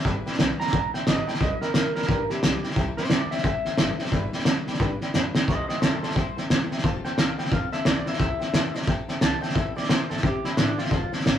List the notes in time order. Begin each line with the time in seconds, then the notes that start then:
0.05 G1 G3 D4 E4 B4 D5 G5, kick, snare
0.25 D4 E4 B4 D5 G5, muted upright bass stroke, snare
0.33 snare
0.39 B1 G3 D4 E4 B4 D5 G5, snare, hi-hat pedal
0.59 D4 E4 B4 D5 G5 A#5, muted upright bass stroke, snare
0.67 snare
0.72 D2 G3 D4 E4 B4 D5 G5, kick, snare
0.94 B1 D4 E4 B4 D5 E5 G5, snare
1.06 G1 G3 D4 B4 D5 D#5 A5, snare, hi-hat pedal
1.27 D4 E4 B4 D5 G5 A5, snare
1.34 snare
1.40 B1 G3 D4 E4 B4 D5 D#5 G5, kick, snare
1.61 D4 E4 A#4 B4 D5 G5, muted upright bass stroke, snare
1.74 D2 G3 D4 A#4 B4 D5 E5, snare, hi-hat pedal
1.95 E2 D4 E4 A#4 B4 D5 G5, snare
2.02 snare
2.08 G2 G3 D4 E4 A#4 B4 D5 G5, kick, snare
2.29 D4 E4 G4 B4 D5 E5, muted upright bass stroke, snare
2.42 B1 G3 D4 B4 D5 G5, snare, hi-hat pedal
2.63 D4 E4 B4 D5 G5, muted upright bass stroke, snare
2.70 snare
2.76 C2 C3 E3 G3 C4 E4 A4 C5 E5 G5, kick, snare
2.97 G3 C4 E4 A4 C5 E5 G5, muted upright bass stroke, snare
3.04 snare
3.10 E2 C3 E3 G3 C4 E4 A4 C5 D5 G5, snare, hi-hat pedal
3.30 G3 C4 E4 A4 C5 E5 G5, snare
3.38 snare
3.44 G3 C4 E4 A4 C5 E5 G5, kick, snare
3.65 E2 G3 C4 E4 A4 C5 E5 G5, snare
3.78 F#1 C3 E3 G3 C4 E4 A4 C5 E5 A5, snare, hi-hat pedal
3.98 G3 C4 E4 A4 C5 E5 G5, muted upright bass stroke, snare
4.05 snare
4.11 G1 G3 D4 E4 B4 D5 G5, kick, snare
4.32 D4 E4 B4 D5 G5, snare
4.39 snare
4.45 D2 G3 D4 E4 B4 D5 A5, snare, hi-hat pedal
4.66 E2 D4 E4 B4 D5 G5, snare
4.74 snare
4.78 G2 G3 D4 E4 B4 D5 G5, kick, snare
5.01 D4 E4 B4 D5 G5, muted upright bass stroke, snare
5.13 F2 G3 D4 E4 B4 D5 G5, snare, hi-hat pedal
5.35 E4 B4 D5 G5, muted upright bass stroke, snare
5.47 C2 C3 E3 G3 C4 E4 A4 C5 D#5 E5 G5, kick, snare
5.68 G3 C4 E4 A4 C5 D#5 E5 G5, muted upright bass stroke, snare
5.81 E2 C3 E3 G3 C4 E4 A4 C5 E5 A5, snare, hi-hat pedal
6.03 G3 C4 E4 A4 C5 E5 G5, muted upright bass stroke, snare
6.10 snare
6.16 G2 G3 C4 E4 A4 C5 E5 G5, kick, snare
6.36 E2 G3 C4 E4 A4 C5 E5 G5, snare
6.49 E2 C3 E3 G3 C4 E4 A4 C5 E5 G5, snare, hi-hat pedal
6.69 G3 C4 E4 A4 C5 E5 G5, muted upright bass stroke, snare
6.78 snare
6.84 F1 D3 F3 C4 F4 A4 C5 F5 A5, kick, snare
7.04 C4 F4 A4 C5 F5 G5 C6, muted upright bass stroke, snare
7.18 C2 D3 F3 C4 F4 A4 C5 F5 A5, snare, hi-hat pedal
7.38 C4 F4 A4 C5 F5 G5 B5, snare
7.45 snare
7.51 F2 C4 F4 A4 C5 F5 A5, kick, snare
7.72 C4 F4 A4 C5 E5 F5 A5, muted upright bass stroke, snare
7.85 D2 D3 F3 C4 F4 A4 C5 D5 F5 A5, snare, hi-hat pedal
8.05 C4 F4 A4 C5 E5 F5 B5, snare
8.13 snare
8.18 C2 C4 E4 G4 A4 C5 E5 G5, kick, snare
8.40 E4 G4 A4 C5 E5 G5, muted upright bass stroke, snare
8.52 E2 C4 G4 A4 C5 E5 G5, snare, hi-hat pedal
8.74 E4 G4 A4 C5 E5 A5, snare
8.82 snare
8.87 C4 E4 G4 A4 C5 E5 G5, kick, snare
9.08 E2 E4 G4 A4 C5 E5 G5, snare
9.21 C2 C4 E4 G4 A4 C5 E5 G5 A5, snare, hi-hat pedal
9.41 E4 G4 A4 C5 E5 G5 A5, snare
9.49 snare
9.54 E2 C4 E4 G4 A4 C5 E5 G5, kick, snare
9.75 E4 G4 A4 C5 D5 E5 G5, muted upright bass stroke, snare
9.83 snare
9.88 G2 C4 E4 G4 A4 C5 E5 G5, snare, hi-hat pedal
10.09 A2 E4 G4 A4 C5 E5 G5, snare
10.17 snare
10.23 C3 C4 G4 C5 E5 G5, kick, snare
10.44 E4 G4 A4 C5 E5 G5, muted upright bass stroke, snare
10.57 A2 C4 D4 E4 G4 A4 C5 E5 A5, snare, hi-hat pedal
10.77 E4 F4 G4 A4 C5 E5 G5, snare
10.85 snare
10.91 F1 D3 F3 C4 F4 A4 C5 F5 A5, kick, snare
11.12 C4 F4 A4 C5 F5 A5, muted upright bass stroke, snare
11.19 snare
11.24 A1 D3 F3 C4 F4 A4 C5 F5 A5, snare, hi-hat pedal